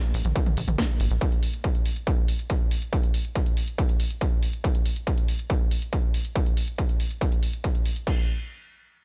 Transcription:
0.04 closed hi-hat
0.14 A#1, open hi-hat
0.25 A#1, closed hi-hat, mid tom
0.36 kick, closed hi-hat
0.46 closed hi-hat, mid tom
0.57 A#1, open hi-hat
0.68 A#1, closed hi-hat, mid tom
0.78 kick, snare, closed hi-hat
1.00 G#1, open hi-hat
1.11 A#1, closed hi-hat
1.21 kick, closed hi-hat
1.32 closed hi-hat
1.43 open hi-hat
1.53 closed hi-hat
1.64 kick, closed hi-hat
1.75 closed hi-hat
1.86 open hi-hat
1.96 closed hi-hat
2.07 kick, closed hi-hat
2.28 open hi-hat
2.39 closed hi-hat
2.50 kick, closed hi-hat
2.71 open hi-hat
2.82 closed hi-hat
2.93 kick, closed hi-hat
3.03 closed hi-hat
3.14 open hi-hat
3.25 closed hi-hat
3.35 kick, closed hi-hat
3.46 closed hi-hat
3.57 open hi-hat
3.68 closed hi-hat
3.78 kick, closed hi-hat
3.89 closed hi-hat
4.00 open hi-hat
4.10 closed hi-hat
4.21 kick, closed hi-hat
4.43 open hi-hat
4.53 closed hi-hat
4.64 kick, closed hi-hat
4.75 closed hi-hat
4.86 open hi-hat
4.96 closed hi-hat
5.07 kick, closed hi-hat
5.18 closed hi-hat
5.28 open hi-hat
5.39 closed hi-hat
5.50 kick, closed hi-hat
5.71 open hi-hat
5.82 closed hi-hat
5.93 kick, closed hi-hat
6.14 open hi-hat
6.25 closed hi-hat
6.36 kick, closed hi-hat
6.46 closed hi-hat
6.57 open hi-hat
6.68 closed hi-hat
6.78 kick, closed hi-hat
6.89 closed hi-hat
7.00 open hi-hat
7.11 closed hi-hat
7.21 kick, closed hi-hat
7.32 closed hi-hat
7.43 open hi-hat
7.53 closed hi-hat
7.64 kick, closed hi-hat
7.75 closed hi-hat
7.85 open hi-hat
7.96 closed hi-hat
8.07 kick, crash

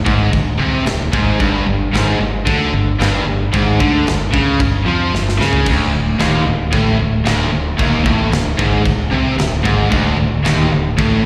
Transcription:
0.05 G#1 G#2, kick
0.31 D1 D2, kick, china
0.58 C2 C3
0.84 D1 D2, snare, china
1.12 G#1 G#2, kick
1.39 G1 G2, kick, china
1.66 G1 G2
1.94 G#1 G#2, snare, china
2.20 G1 G2
2.46 D2 D3, kick, china
2.73 G1 G2
3.00 G1 G2, snare, china
3.25 G1 G2
3.53 G#1 G#2, kick, china
3.79 D2 D3, kick
4.05 G1 G2, snare, china
4.33 C#2 C#3, kick
4.59 G1 G2, kick, china
4.85 F2 F3
5.12 G1 G2, snare
5.29 snare
5.39 C#2 C#3, snare
5.53 floor tom
5.66 D1 D2, kick, china, crash
5.93 D1 D2
6.19 D#1 D#2, snare, china
6.46 D1 D2
6.73 A1 A2, kick, china
6.99 D1 D2
7.25 D1 D2, snare, china
7.52 D1 D2
7.78 D#1 D#2, kick, china
8.04 A1 A2, kick
8.31 D1 D2, snare, china
8.57 G#1 G#2, kick
8.85 D1 D2, kick, china
9.11 C2 C3
9.38 D1 D2, snare, china
9.64 G#1 G#2, kick
9.90 D1 D2, kick, china
10.17 D1 D2
10.43 D#1 D#2, snare, china
10.71 D1 D2
10.98 A1 A2, kick, china

